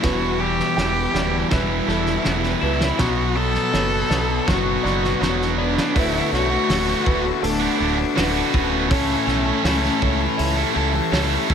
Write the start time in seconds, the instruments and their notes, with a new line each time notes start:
Already playing: ambient pad E5
0.03 fingered electric bass E1, overdriven electric guitar E2 B2 E3, ambient pad G3 B5, cello F#4, felt piano B4, kick, snare
0.40 overdriven electric guitar E2 B2 E3, cello G4
0.60 snare
0.77 fingered electric bass E1, overdriven electric guitar E2 B2 E3, felt piano G5, snare
1.14 fingered electric bass D1, overdriven electric guitar E2 B2 E3, clean electric guitar G3, felt piano D5, snare
1.51 fingered electric bass E1, overdriven electric guitar E2 B2 E3, clean electric guitar B3, cello E4, felt piano B4, kick, snare
1.87 fingered electric bass E1, overdriven electric guitar E2 B2 E3, clean electric guitar G3, felt piano A4, snare
2.06 snare
2.25 fingered electric bass E1, overdriven electric guitar E2 B2 E3, clean electric guitar B3, snare
2.43 snare
2.61 fingered electric bass C#2, overdriven electric guitar E2 B2 E3, cello E4, clean electric guitar E4, felt piano B4
2.81 snare
2.98 fingered electric bass B1, overdriven electric guitar B2 F#3 B3, cello F#4, ambient pad A4 F#5, kick, snare
3.36 overdriven electric guitar B2 F#3 B3, cello A4
3.55 snare
3.73 fingered electric bass F#1, overdriven electric guitar B2 F#3 B3, felt piano C#5, snare
4.10 fingered electric bass B1, overdriven electric guitar B2 F#3 B3, clean electric guitar D4, snare
4.47 fingered electric bass F#1, overdriven electric guitar B2 F#3 B3, clean electric guitar F#4, cello F#4, kick, snare
4.83 fingered electric bass F#1, overdriven electric guitar B2 F#3 B3, clean electric guitar D4, felt piano D5, snare
5.04 snare
5.20 fingered electric bass E1, overdriven electric guitar B2 F#3 B3, clean electric guitar F#4, felt piano C#5, snare
5.42 snare
5.58 overdriven electric guitar B2 F#3 B3, clean electric guitar B4, felt piano D5
5.62 cello D4
5.78 snare
5.94 fingered electric bass D1, overdriven electric guitar D2 A2 D3 A3 B3 F#4, cello E4, ambient pad A4 F#5 A5 B5, felt piano B4, kick, open hi-hat
6.31 fingered electric bass B1, overdriven electric guitar D3 A3 B3 F#4, cello F#4, felt piano C#5, snare
6.49 overdriven electric guitar D3 A3 B3 F#4
6.67 fingered electric bass D1, overdriven electric guitar D2 A2 D3 A3 B3 F#4, snare, open hi-hat
6.86 distorted electric guitar D3 A3 B3 F#4, snare
7.04 fingered electric bass D1, overdriven electric guitar D3 A3 B3 F#4, felt piano B4, kick
7.23 overdriven electric guitar D3 A3 B3 F#4, muted distorted electric guitar stroke
7.42 fingered electric bass D1, clean electric guitar A3, cello D4, felt piano A4, open hi-hat
7.60 distorted electric guitar D3 A3 B3 F#4
7.78 fingered electric bass D1, overdriven electric guitar D3 A3 B3 F#4
7.96 overdriven electric guitar D3 A3 B3 F#4, muted distorted electric guitar stroke
8.15 fingered electric bass D1, overdriven electric guitar D2 A2 D3 A3 B3 F#4, felt piano B4, snare, open hi-hat
8.52 fingered electric bass D1, overdriven electric guitar D3 A3 B3 F#4, cello C#4, kick
8.70 overdriven electric guitar D3 A3 B3 F#4
8.89 fingered electric bass C#2, overdriven electric guitar A2 E3 A3 C#4 E4 A4, ambient pad G4 E5 A5 C#6, felt piano C#5, kick, open hi-hat
9.26 fingered electric bass B1, overdriven electric guitar A3 C#4 E4 A4, felt piano E5, snare
9.44 overdriven electric guitar A3 C#4 E4 A4
9.63 fingered electric bass C#2, overdriven electric guitar A2 E3 A3 C#4 E4 A4, snare, open hi-hat
9.82 distorted electric guitar A3 C#4 E4 A4, snare
10.00 fingered electric bass C#2, overdriven electric guitar A3 C#4 E4 A4, felt piano C#5, kick
10.18 overdriven electric guitar A3 C#4 E4 A4, muted distorted electric guitar stroke
10.38 fingered electric bass C#2, clean electric guitar C#4, felt piano E5, open hi-hat
10.56 distorted electric guitar A3 C#4 E4 A4
10.73 fingered electric bass C#2, overdriven electric guitar A3 C#4 E4 A4
10.93 overdriven electric guitar A3 C#4 E4 A4, muted distorted electric guitar stroke
11.11 fingered electric bass C#2, overdriven electric guitar A2 E3 A3 C#4 E4 A4, felt piano C#5, snare, open hi-hat
11.48 fingered electric bass F#1, overdriven electric guitar A3 C#4 E4, cello E4, kick